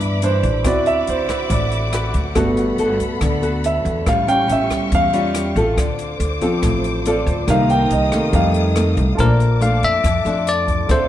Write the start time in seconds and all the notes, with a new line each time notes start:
Already playing: G2 E3 B3 D4 E4 E5 B5 D6
0.01 closed hi-hat
0.22 E3 B3 D4 C5, closed hi-hat
0.43 A1, kick, closed hi-hat
0.64 D2 D3 C4 E4 F#4 B4 D5 E5 F#5 B5 D6, kick, cross-stick, closed hi-hat
0.86 E5, closed hi-hat
1.07 D2 C5, closed hi-hat
1.29 C4 F#4 B4, kick, cross-stick, closed hi-hat
1.50 A1 A2 D5, kick, closed hi-hat
1.72 closed hi-hat
1.93 C4 F#4 B4, cross-stick, closed hi-hat
2.14 D2, kick, closed hi-hat
2.35 G1 G3 A3 B3 F#4 A4 B5, kick, cross-stick, closed hi-hat
2.57 closed hi-hat
2.78 G1 B3 F#4 A4, closed hi-hat
3.00 kick, closed hi-hat
3.21 D2 D3, kick, cross-stick, closed hi-hat
3.42 B3 F#4 A4, closed hi-hat
3.64 E5, closed hi-hat
3.85 E2, kick, closed hi-hat
4.06 A1 A2 G3 C#4 F4 G4 F5 C#6, kick, cross-stick, closed hi-hat
4.27 G3 C#4 F5 G5, closed hi-hat
4.48 A1 G3 C#4 F4, closed hi-hat
4.52 E5
4.70 kick, cross-stick, closed hi-hat
4.92 E2 F5, kick, closed hi-hat
5.13 G3 C#4 F4, closed hi-hat
5.35 cross-stick, closed hi-hat
5.56 A1 C4 F4 A4, kick, closed hi-hat
5.77 D2 D3 C5 D6, kick, cross-stick, closed hi-hat
5.99 closed hi-hat
6.20 D2, closed hi-hat
6.41 F3 C4 F4 A4, kick, closed hi-hat
6.62 A1 A2, kick, cross-stick, closed hi-hat
6.84 closed hi-hat
7.05 C4 F4 A4 D5, closed hi-hat
7.26 D2, kick, closed hi-hat
7.47 C2 C3 D#3 A#3 D#4 G4 F5 A#5 D#6, kick, cross-stick, closed hi-hat
7.70 G5, closed hi-hat
7.91 C2 D#5, closed hi-hat
8.12 D#3 A3 C4, kick, cross-stick, closed hi-hat
8.33 F2 G3 A3 D#4 A4 F5, kick, closed hi-hat
8.54 closed hi-hat
8.76 D#3 A3 C4, cross-stick, closed hi-hat
8.97 C2, kick, closed hi-hat
9.15 A#1 F4 C5 A5, kick, cross-stick, closed hi-hat
9.19 A#2 F3 A3 D4 A#4 D5 A5 D6
9.40 closed hi-hat
9.60 F3 A3 D4 F5, closed hi-hat
9.83 F2 E5, closed hi-hat
10.04 F2, kick, cross-stick, closed hi-hat
10.25 F2 F3 A3 D4, closed hi-hat
10.47 D5, closed hi-hat
10.68 kick, closed hi-hat
10.86 D2 D3 C4 F4 A4 C5, kick, cross-stick, closed hi-hat
10.90 A4 C5 E5 D6